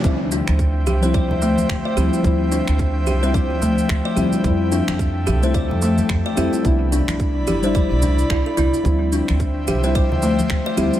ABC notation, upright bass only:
X:1
M:4/4
L:1/16
Q:"Swing 16ths" 1/4=109
K:Ddor
V:1 name="Upright bass" clef=bass
D,,2 z D,,3 C,,3 D,,2 z D,, z D,, z | D,,2 z D,,3 C,,3 D,,2 z D,, z D,, z | F,,2 z F,,3 C,,3 F,,2 z F,, z F,, z | C,,2 z C,,3 G,,,3 C,,2 z C,, z C,, z |
D,,2 z D,,3 C,,3 D,,2 z D,, z D,, z |]